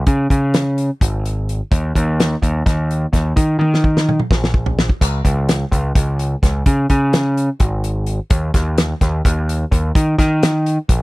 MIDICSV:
0, 0, Header, 1, 3, 480
1, 0, Start_track
1, 0, Tempo, 470219
1, 70, Time_signature, 7, 3, 24, 8
1, 11249, End_track
2, 0, Start_track
2, 0, Title_t, "Picked electric bass"
2, 0, Program_c, 0, 34
2, 68, Note_on_c, 0, 49, 78
2, 270, Note_off_c, 0, 49, 0
2, 309, Note_on_c, 0, 49, 88
2, 912, Note_off_c, 0, 49, 0
2, 1034, Note_on_c, 0, 32, 73
2, 1635, Note_off_c, 0, 32, 0
2, 1752, Note_on_c, 0, 39, 88
2, 1953, Note_off_c, 0, 39, 0
2, 1995, Note_on_c, 0, 39, 101
2, 2396, Note_off_c, 0, 39, 0
2, 2473, Note_on_c, 0, 39, 85
2, 2674, Note_off_c, 0, 39, 0
2, 2715, Note_on_c, 0, 39, 86
2, 3116, Note_off_c, 0, 39, 0
2, 3192, Note_on_c, 0, 39, 90
2, 3394, Note_off_c, 0, 39, 0
2, 3433, Note_on_c, 0, 51, 90
2, 3634, Note_off_c, 0, 51, 0
2, 3663, Note_on_c, 0, 51, 94
2, 4269, Note_off_c, 0, 51, 0
2, 4396, Note_on_c, 0, 34, 83
2, 4997, Note_off_c, 0, 34, 0
2, 5116, Note_on_c, 0, 37, 82
2, 5316, Note_off_c, 0, 37, 0
2, 5356, Note_on_c, 0, 37, 93
2, 5756, Note_off_c, 0, 37, 0
2, 5835, Note_on_c, 0, 37, 93
2, 6035, Note_off_c, 0, 37, 0
2, 6077, Note_on_c, 0, 37, 91
2, 6476, Note_off_c, 0, 37, 0
2, 6562, Note_on_c, 0, 37, 88
2, 6759, Note_off_c, 0, 37, 0
2, 6798, Note_on_c, 0, 49, 93
2, 6997, Note_off_c, 0, 49, 0
2, 7041, Note_on_c, 0, 49, 91
2, 7639, Note_off_c, 0, 49, 0
2, 7758, Note_on_c, 0, 32, 85
2, 8356, Note_off_c, 0, 32, 0
2, 8478, Note_on_c, 0, 39, 92
2, 8676, Note_off_c, 0, 39, 0
2, 8719, Note_on_c, 0, 39, 90
2, 9116, Note_off_c, 0, 39, 0
2, 9199, Note_on_c, 0, 39, 93
2, 9396, Note_off_c, 0, 39, 0
2, 9444, Note_on_c, 0, 39, 91
2, 9839, Note_off_c, 0, 39, 0
2, 9917, Note_on_c, 0, 39, 92
2, 10115, Note_off_c, 0, 39, 0
2, 10159, Note_on_c, 0, 51, 98
2, 10356, Note_off_c, 0, 51, 0
2, 10396, Note_on_c, 0, 51, 105
2, 10996, Note_off_c, 0, 51, 0
2, 11117, Note_on_c, 0, 34, 82
2, 11249, Note_off_c, 0, 34, 0
2, 11249, End_track
3, 0, Start_track
3, 0, Title_t, "Drums"
3, 67, Note_on_c, 9, 42, 77
3, 69, Note_on_c, 9, 36, 101
3, 169, Note_off_c, 9, 42, 0
3, 171, Note_off_c, 9, 36, 0
3, 310, Note_on_c, 9, 36, 70
3, 317, Note_on_c, 9, 42, 64
3, 412, Note_off_c, 9, 36, 0
3, 419, Note_off_c, 9, 42, 0
3, 550, Note_on_c, 9, 42, 83
3, 556, Note_on_c, 9, 38, 117
3, 652, Note_off_c, 9, 42, 0
3, 659, Note_off_c, 9, 38, 0
3, 795, Note_on_c, 9, 42, 60
3, 897, Note_off_c, 9, 42, 0
3, 1033, Note_on_c, 9, 36, 90
3, 1040, Note_on_c, 9, 42, 88
3, 1135, Note_off_c, 9, 36, 0
3, 1142, Note_off_c, 9, 42, 0
3, 1281, Note_on_c, 9, 42, 68
3, 1383, Note_off_c, 9, 42, 0
3, 1522, Note_on_c, 9, 42, 64
3, 1624, Note_off_c, 9, 42, 0
3, 1752, Note_on_c, 9, 36, 105
3, 1756, Note_on_c, 9, 42, 88
3, 1854, Note_off_c, 9, 36, 0
3, 1858, Note_off_c, 9, 42, 0
3, 1995, Note_on_c, 9, 36, 67
3, 2003, Note_on_c, 9, 42, 61
3, 2097, Note_off_c, 9, 36, 0
3, 2105, Note_off_c, 9, 42, 0
3, 2243, Note_on_c, 9, 42, 86
3, 2249, Note_on_c, 9, 38, 116
3, 2345, Note_off_c, 9, 42, 0
3, 2351, Note_off_c, 9, 38, 0
3, 2476, Note_on_c, 9, 36, 66
3, 2484, Note_on_c, 9, 42, 70
3, 2578, Note_off_c, 9, 36, 0
3, 2586, Note_off_c, 9, 42, 0
3, 2718, Note_on_c, 9, 36, 92
3, 2723, Note_on_c, 9, 42, 77
3, 2729, Note_on_c, 9, 38, 28
3, 2820, Note_off_c, 9, 36, 0
3, 2825, Note_off_c, 9, 42, 0
3, 2831, Note_off_c, 9, 38, 0
3, 2967, Note_on_c, 9, 42, 62
3, 3069, Note_off_c, 9, 42, 0
3, 3198, Note_on_c, 9, 36, 66
3, 3203, Note_on_c, 9, 42, 66
3, 3209, Note_on_c, 9, 38, 33
3, 3300, Note_off_c, 9, 36, 0
3, 3305, Note_off_c, 9, 42, 0
3, 3311, Note_off_c, 9, 38, 0
3, 3438, Note_on_c, 9, 36, 101
3, 3439, Note_on_c, 9, 42, 81
3, 3540, Note_off_c, 9, 36, 0
3, 3541, Note_off_c, 9, 42, 0
3, 3686, Note_on_c, 9, 48, 54
3, 3788, Note_off_c, 9, 48, 0
3, 3817, Note_on_c, 9, 38, 49
3, 3919, Note_off_c, 9, 38, 0
3, 3920, Note_on_c, 9, 36, 68
3, 4022, Note_off_c, 9, 36, 0
3, 4051, Note_on_c, 9, 38, 61
3, 4153, Note_off_c, 9, 38, 0
3, 4172, Note_on_c, 9, 47, 66
3, 4274, Note_off_c, 9, 47, 0
3, 4283, Note_on_c, 9, 47, 63
3, 4385, Note_off_c, 9, 47, 0
3, 4396, Note_on_c, 9, 36, 91
3, 4407, Note_on_c, 9, 38, 74
3, 4498, Note_off_c, 9, 36, 0
3, 4509, Note_off_c, 9, 38, 0
3, 4530, Note_on_c, 9, 38, 71
3, 4632, Note_off_c, 9, 38, 0
3, 4634, Note_on_c, 9, 36, 90
3, 4736, Note_off_c, 9, 36, 0
3, 4759, Note_on_c, 9, 43, 73
3, 4861, Note_off_c, 9, 43, 0
3, 4886, Note_on_c, 9, 38, 92
3, 4988, Note_off_c, 9, 38, 0
3, 4996, Note_on_c, 9, 36, 70
3, 5098, Note_off_c, 9, 36, 0
3, 5118, Note_on_c, 9, 36, 85
3, 5122, Note_on_c, 9, 42, 92
3, 5122, Note_on_c, 9, 55, 75
3, 5220, Note_off_c, 9, 36, 0
3, 5225, Note_off_c, 9, 42, 0
3, 5225, Note_off_c, 9, 55, 0
3, 5357, Note_on_c, 9, 36, 67
3, 5361, Note_on_c, 9, 42, 75
3, 5459, Note_off_c, 9, 36, 0
3, 5463, Note_off_c, 9, 42, 0
3, 5601, Note_on_c, 9, 42, 98
3, 5607, Note_on_c, 9, 38, 105
3, 5703, Note_off_c, 9, 42, 0
3, 5709, Note_off_c, 9, 38, 0
3, 5840, Note_on_c, 9, 36, 66
3, 5847, Note_on_c, 9, 42, 70
3, 5942, Note_off_c, 9, 36, 0
3, 5949, Note_off_c, 9, 42, 0
3, 6078, Note_on_c, 9, 36, 97
3, 6079, Note_on_c, 9, 42, 86
3, 6180, Note_off_c, 9, 36, 0
3, 6181, Note_off_c, 9, 42, 0
3, 6323, Note_on_c, 9, 42, 71
3, 6425, Note_off_c, 9, 42, 0
3, 6561, Note_on_c, 9, 36, 74
3, 6567, Note_on_c, 9, 42, 62
3, 6573, Note_on_c, 9, 38, 35
3, 6663, Note_off_c, 9, 36, 0
3, 6669, Note_off_c, 9, 42, 0
3, 6675, Note_off_c, 9, 38, 0
3, 6798, Note_on_c, 9, 42, 86
3, 6800, Note_on_c, 9, 36, 103
3, 6900, Note_off_c, 9, 42, 0
3, 6902, Note_off_c, 9, 36, 0
3, 7040, Note_on_c, 9, 42, 71
3, 7042, Note_on_c, 9, 36, 73
3, 7142, Note_off_c, 9, 42, 0
3, 7144, Note_off_c, 9, 36, 0
3, 7280, Note_on_c, 9, 42, 90
3, 7286, Note_on_c, 9, 38, 110
3, 7382, Note_off_c, 9, 42, 0
3, 7388, Note_off_c, 9, 38, 0
3, 7528, Note_on_c, 9, 42, 67
3, 7630, Note_off_c, 9, 42, 0
3, 7755, Note_on_c, 9, 42, 85
3, 7761, Note_on_c, 9, 36, 95
3, 7857, Note_off_c, 9, 42, 0
3, 7863, Note_off_c, 9, 36, 0
3, 8002, Note_on_c, 9, 42, 62
3, 8104, Note_off_c, 9, 42, 0
3, 8233, Note_on_c, 9, 42, 64
3, 8335, Note_off_c, 9, 42, 0
3, 8476, Note_on_c, 9, 42, 90
3, 8480, Note_on_c, 9, 36, 109
3, 8578, Note_off_c, 9, 42, 0
3, 8582, Note_off_c, 9, 36, 0
3, 8718, Note_on_c, 9, 36, 81
3, 8719, Note_on_c, 9, 42, 68
3, 8726, Note_on_c, 9, 38, 35
3, 8820, Note_off_c, 9, 36, 0
3, 8821, Note_off_c, 9, 42, 0
3, 8828, Note_off_c, 9, 38, 0
3, 8959, Note_on_c, 9, 42, 97
3, 8965, Note_on_c, 9, 38, 110
3, 9061, Note_off_c, 9, 42, 0
3, 9067, Note_off_c, 9, 38, 0
3, 9199, Note_on_c, 9, 36, 69
3, 9201, Note_on_c, 9, 42, 67
3, 9207, Note_on_c, 9, 38, 37
3, 9302, Note_off_c, 9, 36, 0
3, 9303, Note_off_c, 9, 42, 0
3, 9309, Note_off_c, 9, 38, 0
3, 9441, Note_on_c, 9, 36, 92
3, 9449, Note_on_c, 9, 42, 84
3, 9544, Note_off_c, 9, 36, 0
3, 9551, Note_off_c, 9, 42, 0
3, 9690, Note_on_c, 9, 42, 69
3, 9792, Note_off_c, 9, 42, 0
3, 9921, Note_on_c, 9, 36, 74
3, 9927, Note_on_c, 9, 42, 76
3, 10023, Note_off_c, 9, 36, 0
3, 10029, Note_off_c, 9, 42, 0
3, 10160, Note_on_c, 9, 36, 111
3, 10169, Note_on_c, 9, 42, 94
3, 10263, Note_off_c, 9, 36, 0
3, 10271, Note_off_c, 9, 42, 0
3, 10399, Note_on_c, 9, 36, 82
3, 10404, Note_on_c, 9, 42, 71
3, 10410, Note_on_c, 9, 38, 36
3, 10501, Note_off_c, 9, 36, 0
3, 10506, Note_off_c, 9, 42, 0
3, 10512, Note_off_c, 9, 38, 0
3, 10644, Note_on_c, 9, 42, 101
3, 10650, Note_on_c, 9, 38, 116
3, 10746, Note_off_c, 9, 42, 0
3, 10752, Note_off_c, 9, 38, 0
3, 10886, Note_on_c, 9, 42, 74
3, 10988, Note_off_c, 9, 42, 0
3, 11118, Note_on_c, 9, 36, 88
3, 11120, Note_on_c, 9, 42, 87
3, 11220, Note_off_c, 9, 36, 0
3, 11222, Note_off_c, 9, 42, 0
3, 11249, End_track
0, 0, End_of_file